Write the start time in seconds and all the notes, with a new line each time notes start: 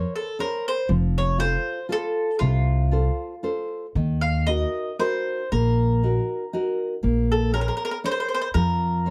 Already playing: A#4 C5 C#5
0.16 A4
0.39 A#4 C5 C#5
0.68 C5
0.89 F1 F3
1.18 C#5
1.38 F4 A4 C5
1.89 F4 A4 C5
2.39 C2 C3 F4
2.91 F4 A4 C5
3.43 F4 A4 C5
3.95 D#2 D#3
4.21 F5
4.47 D#4 F#4 A#4 D#5
4.99 D#4 F#4 A#4 C5
5.52 A#1 A#3 A#4
6.03 D#4 F#4 A#4
6.53 D#4 F#4 A#4
7.03 A#1 A#3
7.32 A4
7.53 A#4 C5 C#5
7.61 A#4
7.68 A#4
7.77 A#4
7.85 A#4
7.91 A#4
8.04 A#4 C5 C#5
8.12 C5
8.20 C5
8.29 C5
8.34 C5
8.41 C5
8.54 F2 F3 A#4
9.06 A#4 C5 C#5